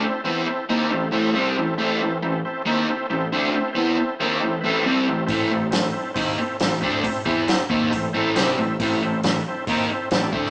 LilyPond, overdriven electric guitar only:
\new Staff \with { instrumentName = "Overdriven electric guitar" } { \clef bass \time 4/4 \key a \minor \tempo 4 = 137 r8 <e b e'>8 r8 <dis bes dis'>8 <a, e>8 <a, e a>8 <c g c'>8 <a, e>8 | <a, e a>8 <a, e>8 <a, e>8 r8 <dis bes dis'>8 r8 <a, e>8 <d a d'>8 | r8 <e b e'>8 r8 <dis bes dis'>8 <a, e>8 <a, e a>8 <c g c'>8 <a, e>8 | <a, e a>8 <a, e>8 <a, e>8 r8 <dis bes dis'>8 r8 <a, e>8 <d a d'>8 |
r8 <e b e'>8 r8 <dis bes dis'>8 <a, e>8 <a, e a>8 <c g c'>8 <a, e>8 | <a, e a>8 <a, e>8 <a, e>8 r8 <dis bes dis'>8 r8 <a, e>8 <d a d'>8 | }